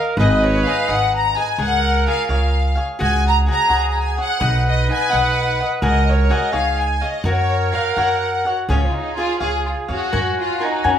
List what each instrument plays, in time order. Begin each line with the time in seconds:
Already playing: trumpet A#4, cavaquinho A#4 D#5 F5
0.17 upright bass G#1, cavaquinho D#4 G#4 B4 D#5, trumpet B4, violin section D#5
0.44 violin section C#5
0.66 cavaquinho D#4 G#4 B4 D#5, violin section F5
0.88 upright bass G#1, cavaquinho D#4 G#4 B4 D#5, violin section F#5
1.15 violin section A#5
1.35 cavaquinho G#4 B4 D#5, violin section G#5
1.58 upright bass C#2, cavaquinho G#4 C#5, trumpet A#4
1.62 violin section F#5
2.07 cavaquinho F4 G#4 C#5 F5, violin section F5
2.29 upright bass C#2, cavaquinho F4 G#4 C#5 F5, violin section F5
2.75 cavaquinho G#4 C#5 F5
2.99 upright bass C#2, cavaquinho F#4 G#4 C#5 F#5, trumpet G#4, violin section G#5
3.28 violin section A#5
3.46 cavaquinho F#4 G#4 C#5 F#5
3.51 violin section A#5
3.69 upright bass C#2, cavaquinho F#4 G#4 C#5 F#5
3.89 violin section A#5
3.99 violin section G#5
4.17 cavaquinho G#4 C#5 F#5, violin section F#5
4.40 upright bass B1, cavaquinho D#4 B4 D#5 F#5, trumpet B4
4.69 violin section D#5
4.89 cavaquinho D#4 B4 D#5 F#5, violin section G#5
5.10 upright bass B1, cavaquinho D#4 B4 D#5 F#5
5.14 violin section F#5
5.60 cavaquinho B4 D#5 F#5
5.82 upright bass C#2, cavaquinho F#4 G#4 C#5 F#5, trumpet A#4, violin section D#5
6.10 violin section C#5
6.30 cavaquinho F#4 G#4 C#5 F#5, violin section D#5
6.52 upright bass C#2, cavaquinho D#4 G#4 C#5 F5, trumpet G#4, violin section F5
6.79 violin section G#5
7.01 cavaquinho G#4 C#5 F5, violin section D#5
7.23 upright bass F#2, cavaquinho F#4 A#4 C#5 F#5, trumpet A#4
7.29 violin section C#5
7.73 cavaquinho F#4 A#4 C#5 F#5, violin section F5
7.97 upright bass F#2, cavaquinho F#4 A#4 C#5 F#5, violin section F#5
8.45 trumpet F#4, cavaquinho A#4 C#5 F#5
8.69 upright bass C#2, violin section C#4, cavaquinho F4 G#4 C#5 F5, trumpet G#4
8.86 violin section F4
8.94 violin section D#4
9.17 cavaquinho F4 G#4 C#5 F5, violin section F4
9.40 upright bass C#2, cavaquinho F4 G#4 C#5 F5, violin section G#4
9.66 violin section F4
9.88 upright bass F2, violin section F#4, cavaquinho G#4 C#5 F5
10.12 upright bass F#2, trumpet F#4, cavaquinho A#4 C#5 F#5 G#5
10.40 violin section F4
10.60 violin section D#4, cavaquinho A#4 C#5 F#5 G#5
10.84 upright bass F#2, violin section C#4, cavaquinho A#4 C#5 F#5 G#5